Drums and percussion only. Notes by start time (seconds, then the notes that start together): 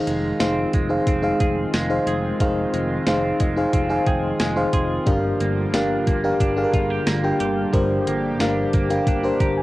0.07 closed hi-hat
0.40 snare, closed hi-hat, tambourine
0.73 kick, closed hi-hat
1.07 kick, closed hi-hat
1.40 kick, closed hi-hat
1.74 snare, closed hi-hat, tambourine
2.07 closed hi-hat
2.40 kick, closed hi-hat
2.74 closed hi-hat
3.07 snare, closed hi-hat, tambourine
3.40 kick, closed hi-hat
3.73 kick, closed hi-hat
4.07 kick, closed hi-hat
4.40 snare, closed hi-hat, tambourine
4.73 kick, closed hi-hat
5.07 kick, closed hi-hat
5.40 closed hi-hat
5.73 snare, closed hi-hat, tambourine
6.07 kick, closed hi-hat
6.40 kick, closed hi-hat
6.74 kick, closed hi-hat
7.07 snare, closed hi-hat, tambourine
7.40 closed hi-hat
7.74 kick, closed hi-hat
8.07 closed hi-hat
8.40 snare, closed hi-hat, tambourine
8.73 kick, closed hi-hat
8.90 closed hi-hat
9.07 kick, closed hi-hat
9.40 kick, closed hi-hat